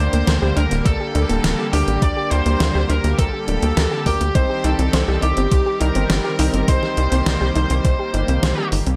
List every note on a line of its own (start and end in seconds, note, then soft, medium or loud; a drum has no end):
0.00 4.31 D3 medium
0.00 4.31 G3 medium
0.00 1.70 A#3 medium
0.00 4.31 A#3 medium
0.00 1.70 D4 medium
0.00 1.70 G4 medium
0.00 8.96 G4 medium
0.00 0.58 C5 loud
0.00 1.70 D5 medium
0.13 0.23 D2 medium
0.13 0.25 A#3 medium
0.13 closed hi-hat medium
0.27 0.38 D2 loud
0.27 0.40 A#4 medium
0.27 snare loud
0.27 closed hi-hat medium
0.42 0.52 D2 medium
0.42 0.56 G4 medium
0.56 0.67 D2 medium
0.56 0.64 D4 loud
0.56 0.83 A#4 loud
0.56 0.84 A#4 loud
0.56 closed hi-hat medium
0.71 0.82 D1 medium
0.71 0.83 A#3 medium
0.71 closed hi-hat medium
0.85 0.96 D2 loud
0.85 1.76 A4 loud
0.85 1.72 A4 loud
0.85 0.98 A#4 medium
0.85 kick loud
0.85 closed hi-hat medium
1.00 1.12 G4 loud
1.15 1.25 D2 loud
1.15 1.22 D4 loud
1.15 closed hi-hat medium
1.29 1.40 D1 medium
1.29 1.37 A#3 medium
1.29 closed hi-hat medium
1.44 1.54 D1 loud
1.44 1.56 A#4 loud
1.44 snare loud
1.44 closed hi-hat medium
1.59 1.66 G4 medium
1.73 1.83 D2 loud
1.73 1.99 A#3 medium
1.73 1.99 D4 medium
1.73 1.80 D4 medium
1.73 2.03 G4 medium
1.73 1.99 G4 medium
1.73 1.99 A#4 medium
1.73 open hi-hat medium
1.88 1.98 A1 medium
1.88 2.00 A#3 medium
1.88 closed hi-hat medium
2.02 2.13 D2 loud
2.02 4.03 A#3 medium
2.02 4.03 D4 medium
2.02 4.03 G4 medium
2.02 2.14 A#4 medium
2.02 2.32 D5 loud
2.02 2.31 D5 loud
2.02 4.03 D5 medium
2.02 kick loud
2.02 closed hi-hat medium
2.17 2.31 G4 loud
2.31 2.42 D2 loud
2.31 2.39 D4 loud
2.31 2.91 C5 loud
2.31 closed hi-hat medium
2.46 2.56 D2 medium
2.46 2.58 A#3 medium
2.46 closed hi-hat medium
2.60 2.71 D2 loud
2.60 2.73 A#4 medium
2.60 snare loud
2.60 closed hi-hat medium
2.75 2.85 D2 medium
2.75 2.87 G4 loud
2.89 3.00 D2 medium
2.89 2.97 D4 loud
2.89 3.19 A#4 loud
2.89 3.18 A#4 medium
2.89 closed hi-hat medium
3.04 3.14 D2 medium
3.04 3.11 A#3 medium
3.04 closed hi-hat medium
3.19 3.29 D2 loud
3.19 4.02 A4 loud
3.19 3.31 A#4 loud
3.19 kick loud
3.19 closed hi-hat medium
3.33 3.41 G4 medium
3.48 3.58 D1 loud
3.48 3.55 D4 medium
3.48 closed hi-hat medium
3.62 3.73 D2 medium
3.62 3.75 A#3 medium
3.62 closed hi-hat medium
3.77 3.87 D2 loud
3.77 3.89 A#4 medium
3.77 snare loud
3.77 closed hi-hat medium
3.91 4.05 G4 loud
4.06 4.16 D2 loud
4.06 4.15 A#3 medium
4.06 4.13 D4 loud
4.06 4.15 D4 medium
4.06 4.33 G4 medium
4.06 4.15 G4 medium
4.06 4.33 G4 medium
4.06 4.15 A#4 medium
4.06 kick medium
4.06 open hi-hat medium
4.21 4.31 D2 medium
4.21 4.33 A#3 medium
4.21 closed hi-hat medium
4.35 4.46 C2 loud
4.35 8.96 D#3 medium
4.35 8.96 G3 medium
4.35 6.66 C4 medium
4.35 6.36 C4 medium
4.35 6.36 D#4 medium
4.35 6.36 G4 medium
4.35 4.65 C5 loud
4.35 4.47 C5 medium
4.35 6.36 C5 medium
4.35 4.65 C5 loud
4.35 kick loud
4.35 closed hi-hat medium
4.50 4.62 G4 medium
4.64 4.75 C2 loud
4.64 4.72 D#4 loud
4.64 5.24 A4 loud
4.64 5.22 A4 medium
4.64 closed hi-hat medium
4.79 4.89 C2 medium
4.79 4.86 C4 medium
4.79 closed hi-hat medium
4.93 5.04 C2 loud
4.93 5.06 C5 loud
4.93 snare loud
4.93 closed hi-hat medium
5.08 5.18 C2 medium
5.08 5.15 G4 medium
5.22 5.33 C2 medium
5.22 5.30 D#4 medium
5.22 5.80 G4 medium
5.22 5.83 G4 loud
5.22 closed hi-hat medium
5.37 5.48 G1 medium
5.37 5.49 C4 medium
5.37 closed hi-hat medium
5.51 5.62 C2 loud
5.51 5.64 C5 medium
5.51 kick loud
5.51 closed hi-hat medium
5.66 5.80 G4 loud
5.81 5.91 C2 loud
5.81 5.88 D#4 loud
5.81 6.71 A#4 loud
5.81 closed hi-hat medium
5.95 6.06 G1 medium
5.95 6.08 C4 medium
5.95 closed hi-hat medium
6.10 6.20 G1 loud
6.10 6.22 C5 medium
6.10 snare loud
6.10 closed hi-hat medium
6.24 6.37 G4 loud
6.39 6.49 C2 medium
6.39 6.65 C4 medium
6.39 6.46 D#4 loud
6.39 6.65 D#4 medium
6.39 6.65 G4 medium
6.39 6.65 C5 medium
6.39 open hi-hat medium
6.54 6.64 G1 medium
6.54 6.61 C4 medium
6.54 closed hi-hat medium
6.68 6.79 C2 medium
6.68 8.96 A#3 medium
6.68 8.69 C4 medium
6.68 8.69 D#4 medium
6.68 8.69 G4 medium
6.68 8.68 C5 loud
6.68 6.80 C5 loud
6.68 8.69 C5 medium
6.68 8.68 C5 loud
6.68 kick loud
6.68 closed hi-hat loud
6.83 6.90 G4 medium
6.83 snare soft
6.97 7.08 C2 medium
6.97 7.05 D#4 medium
6.97 closed hi-hat medium
7.12 7.22 C2 medium
7.12 7.24 C4 medium
7.12 closed hi-hat medium
7.26 7.37 C2 loud
7.26 7.39 C5 medium
7.26 snare loud
7.26 closed hi-hat medium
7.41 7.51 C2 medium
7.41 7.55 G4 loud
7.55 7.66 C2 medium
7.55 7.63 D#4 loud
7.55 closed hi-hat medium
7.70 7.81 C2 medium
7.70 7.82 C4 medium
7.70 closed hi-hat medium
7.85 7.95 C2 loud
7.85 7.97 C5 medium
7.85 kick loud
7.85 closed hi-hat medium
7.99 8.11 G4 loud
8.14 8.24 G1 loud
8.14 8.21 D#4 loud
8.14 closed hi-hat medium
8.28 8.39 C2 medium
8.28 8.36 C4 medium
8.28 closed hi-hat medium
8.43 8.53 C2 loud
8.43 8.55 C5 loud
8.43 snare loud
8.43 closed hi-hat loud
8.57 8.65 G4 medium
8.72 8.82 G1 loud
8.72 8.79 D#4 medium
8.72 open hi-hat medium
8.87 8.96 C2 medium
8.87 8.96 C4 medium
8.87 closed hi-hat medium